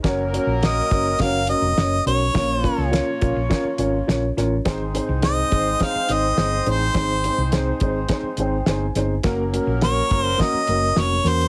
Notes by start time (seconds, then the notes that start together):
0.03 F#1 F#3 A#3 C#4 F#4 A#4 C#5, kick, snare, closed hi-hat
0.33 C#4 F#4 A#4 C#5, closed hi-hat
0.47 A#1
0.62 C#4 F#4 A#4 C#5 D#5, snare, closed hi-hat
0.91 F#1 C#4 F#4 A#4 C#5, kick, closed hi-hat
1.19 F#1 C#4 F#4 A#4 C#5 F5, kick, snare, closed hi-hat
1.47 C#4 F#4 A#4 C#5 D#5, closed hi-hat
1.62 F1
1.77 F#1 C#4 F#4 A#4 C#5, snare, closed hi-hat
2.05 B1 C#4 F#4 A#4 C#5, closed hi-hat
2.33 A#1 A#2 A#3 C#4 F4 A#4 C#5, kick, snare, closed hi-hat
2.63 C#4 F4 A#4 C#5, kick, closed hi-hat
2.78 C#2
2.90 C#4 F4 A#4 C#5, snare, closed hi-hat
3.20 A#1 C#4 F4 A#4 C#5, kick, closed hi-hat
3.36 A#1
3.49 C#4 F4 A#4 C#5, kick, snare, closed hi-hat
3.64 muted fingered electric bass stroke
3.78 G#1 C#4 F4 A#4 C#5, closed hi-hat
4.07 A#1 C#4 F4 A#4 C#5, snare, closed hi-hat
4.37 A1 C#4 F4 A#4 C#5, snare, closed hi-hat
4.65 G#1 G#2 G#3 C4 D#4 G#4 C5, kick, snare, closed hi-hat
4.94 C4 D#4 G#4 C5, closed hi-hat
5.09 C2
5.22 C4 D#4 G#4 C5 D#5, snare, closed hi-hat
5.50 G#1 C4 D#4 G#4 C5, kick, closed hi-hat
5.80 C4 D#4 G#4 C5 F5, kick, snare, closed hi-hat
5.95 muted fingered electric bass stroke
6.08 G#1 C4 D#4 G#4 C5, closed hi-hat
6.12 D#5
6.37 G1 C4 D#4 G#4 C5, snare, closed hi-hat
6.66 A1 C4 D#4 G#4 C5, closed hi-hat
6.94 G#1 G#2 C4 D#4 G#4 C5, kick, snare, closed hi-hat
7.24 C4 D#4 G#4 C5, closed hi-hat
7.38 C2
7.52 C4 D#4 G#4 C5, snare, closed hi-hat
7.80 G#1 C4 D#4 G#4 C5, kick, closed hi-hat
8.09 C4 D#4 G#4 C5, kick, snare, closed hi-hat
8.23 muted fingered electric bass stroke
8.37 G#1 C4 D#4 G#4 C5 G5, closed hi-hat
8.66 G1 C4 D#4 G#4 C5 G#5, snare, closed hi-hat
8.95 G1 C4 D#4 G#4 C5, snare, closed hi-hat
9.23 F#1 F#3 A#3 C#4 F#4 A#4, kick, snare, closed hi-hat
9.53 A#3 C#4 F#4 A#4, closed hi-hat
9.67 A#1
9.81 A#3 C#4 F#4 A#4 C#5, snare, closed hi-hat
10.11 F#1 A#3 C#4 F#4 A#4, kick, closed hi-hat
10.22 C5
10.38 A#3 C#4 F#4 A#4 D#5, kick, snare, closed hi-hat
10.54 muted fingered electric bass stroke
10.67 F#1 A#3 C#4 F#4 A#4, closed hi-hat
10.96 F1 A#3 C#4 F#4 A#4 C#5, snare, closed hi-hat
11.23 E2 A#3 C#4 F#4 A#4, snare, closed hi-hat
11.28 C5
11.41 closed hi-hat